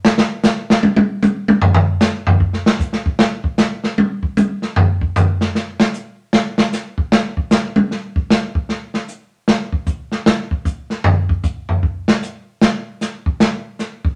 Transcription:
0.05 snare
0.18 snare
0.43 snare, hi-hat pedal
0.70 snare
0.83 high tom
0.96 high tom
1.22 hi-hat pedal, high tom
1.48 high tom
1.62 floor tom
1.74 floor tom
2.01 snare, hi-hat pedal
2.27 floor tom
2.40 kick
2.53 snare
2.66 snare
2.80 kick, hi-hat pedal
2.93 snare
3.06 kick
3.19 snare
3.44 kick
3.58 snare, hi-hat pedal
3.84 snare
3.98 high tom
4.23 kick
4.37 hi-hat pedal, high tom
4.62 snare
4.76 floor tom
5.01 kick
5.16 floor tom, hi-hat pedal
5.41 snare
5.55 snare
5.80 snare
5.94 hi-hat pedal
6.33 snare
6.58 snare
6.73 snare, hi-hat pedal
6.98 kick
7.12 snare
7.37 kick
7.51 snare, hi-hat pedal
7.76 high tom
7.91 snare
8.16 kick
8.30 snare, hi-hat pedal
8.55 kick
8.69 snare
8.94 snare
9.08 hi-hat pedal
9.48 snare
9.73 kick
9.86 kick, hi-hat pedal
10.12 snare
10.26 snare
10.51 kick
10.65 kick, hi-hat pedal
10.90 snare
11.04 floor tom
11.29 kick
11.43 kick, hi-hat pedal
11.69 floor tom
11.83 kick
12.08 snare
12.23 hi-hat pedal
12.62 snare
13.01 snare, hi-hat pedal
13.26 kick
13.40 snare
13.79 snare, hi-hat pedal
14.05 kick

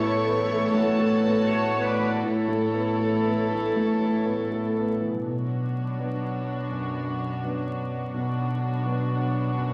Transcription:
Already playing: A1 A2 A3 B3 E4 C#5
0.01 E4 A4 C#6
0.25 B3
0.50 E3
0.74 A3 F#4 A5
0.99 E3
1.24 B3
1.48 A4 C#5
1.73 B3
1.85 B4 D5
1.98 E3
2.23 A1 A2 E4 A4 C#5
2.48 A3
2.74 B3
2.99 A4
3.25 B3
3.50 E3
3.76 A3
4.01 E3
4.26 B3
4.52 A4
4.76 B3
5.01 E3
5.07 B2
5.12 F#3
5.17 B3
5.21 D4 C#5
5.25 B1 B2 F#4
5.99 F#3 B3 D4
6.70 F#2
7.43 F#3 B3 D4
8.14 B1 B2 D4 F#4 C#5
8.85 F#3 B3 D4
9.56 F#2

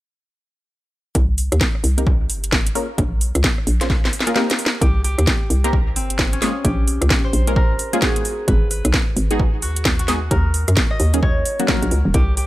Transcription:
1.15 C2, kick, closed hi-hat
1.38 open hi-hat
1.52 D#2, cross-stick, closed hi-hat
1.61 kick, snare
1.75 cross-stick
1.84 C2, open hi-hat
1.98 A#3 C4 D#4 G4 A#4, closed hi-hat
2.07 kick
2.30 G1, open hi-hat
2.44 closed hi-hat
2.52 kick, cross-stick, snare
2.67 closed hi-hat
2.75 A#3 C#4 F4 G#4 A#4, open hi-hat
2.98 A#1, kick, closed hi-hat
3.21 open hi-hat
3.35 C#2, cross-stick, closed hi-hat
3.44 kick, snare
3.58 cross-stick
3.67 A#1, open hi-hat
3.81 A#3 C#4 F4 G#4 C5, snare, closed hi-hat
3.90 kick, snare
4.05 snare
4.13 open hi-hat
4.21 snare
4.27 A#3 C#4 F4 G#4 A#4, closed hi-hat
4.36 A#3 C4 D#4 G4 A#4, snare
4.50 snare, closed hi-hat
4.59 open hi-hat
4.66 snare
4.81 C2 G4, kick, closed hi-hat
5.04 G4, open hi-hat
5.18 D#2, cross-stick, closed hi-hat
5.27 kick, snare
5.50 C2, open hi-hat
5.64 A#3 C4 D#4 G4 A#4, closed hi-hat
5.73 kick
5.96 G1 C4, open hi-hat
6.10 closed hi-hat
6.19 kick, cross-stick, snare
6.33 C#4, closed hi-hat
6.42 G#3 A#3 C#4 F4 G#4, snare, open hi-hat
6.65 A#1 G4, kick, closed hi-hat
6.88 open hi-hat
7.01 C#2, cross-stick, closed hi-hat
7.10 kick, snare
7.24 C5
7.33 A#1, open hi-hat
7.47 G#3 A#3 C#4 F4 A#4, closed hi-hat
7.56 A#4, kick
7.79 open hi-hat
7.93 G#3 A#3 C#4 F4 G#4, closed hi-hat
8.02 G#3 B3 D#4 F#4 G#4, kick, cross-stick, snare
8.16 closed hi-hat
8.25 open hi-hat
8.48 G#1 B4, kick, closed hi-hat
8.71 B4, open hi-hat
8.85 B1, cross-stick, closed hi-hat
8.94 kick, snare
9.17 G#1, open hi-hat
9.31 G#3 B3 D#4 F#4 G#4, closed hi-hat
9.39 kick
9.62 D#2 F#4, open hi-hat
9.76 closed hi-hat
9.85 kick, cross-stick, snare
9.99 F#4, closed hi-hat
10.08 G#3 B3 D#4 F#4 G#4, snare, open hi-hat
10.31 D#2 A#4, kick, closed hi-hat
10.54 open hi-hat
10.68 F#2, cross-stick, closed hi-hat
10.77 kick, snare
10.91 D#5, cross-stick
11.00 D#2, open hi-hat
11.14 F#3 A#3 C#4 D#4 G#4, closed hi-hat
11.23 C#5, kick
11.46 open hi-hat
11.60 F#3 A#3 C#4 D#4 F#4, closed hi-hat
11.68 F#3 A#3 C#4 D#4 F#4 A#4, kick, cross-stick, snare
11.82 A#1, closed hi-hat
11.91 C#2, open hi-hat
12.05 D#1
12.14 C2 G4, kick, closed hi-hat
12.37 G4, open hi-hat

